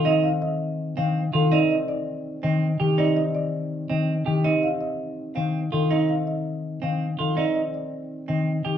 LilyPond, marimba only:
\new Staff \with { instrumentName = "Marimba" } { \time 4/4 \key c \dorian \tempo 4 = 164 ees''8 f''8 ees''8 r4 f''8 r8 a'8 | d''8 ees''8 d''8 r4 ees''8 r8 g'8 | d''8 ees''8 d''8 r4 ees''8 r8 g'8 | ees''8 f''8 ees''8 r4 f''8 r8 a'8 |
ees''8 f''8 ees''8 r4 f''8 r8 a'8 | d''8 ees''8 d''8 r4 ees''8 r8 g'8 | }